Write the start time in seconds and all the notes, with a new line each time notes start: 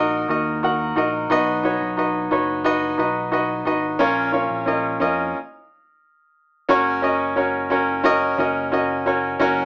Already playing: A#1 D#3 D#4 F#4 A#4 C#5 D#5
0.28 D#2 D#4 F#4 A#4 D#5
0.63 D#4 F#4 A#4 F#5
0.96 A#1 D#4 F#4 A#4 D#5
1.30 B1 B2 D#4 F#4 B4 D#5
1.64 D#4 F#4 B4 C#5
1.80 B1
1.97 D#4 F#4 B4 D#5
2.31 F#1 D#4 F#4 B4 C#5
2.64 D#4 F#4 B4 D#5
2.98 B1 D#4 F#4 B4 D#5
3.31 D#4 F#4 B4 D#5
3.65 G#1 D#4 F#4 B4 D#5
3.99 A#1 A#2 C#4 F4 A#4 C#5
4.32 C#4 F4 A#4 C#5
4.50 A#1
4.66 C#4 F4 A#4 D#5
5.00 F2 C#4 F4 A#4 D#5
6.69 F#1 C#4 F#4 A#4 C#5
7.02 C#4 F#4 A#4 D#5
7.36 C#4 F#4 A#4 C#5
7.70 C#4 F#4 A#4 C#5
8.04 C#4 F#4 A#4 D#5
8.38 F#1 C#4 F#4 A#4 D#5
8.72 C#4 F#4 A#4 D#5
9.06 C#4 F#4 A#4 C#5
9.39 F#1 C#4 F#4 A#4 C#5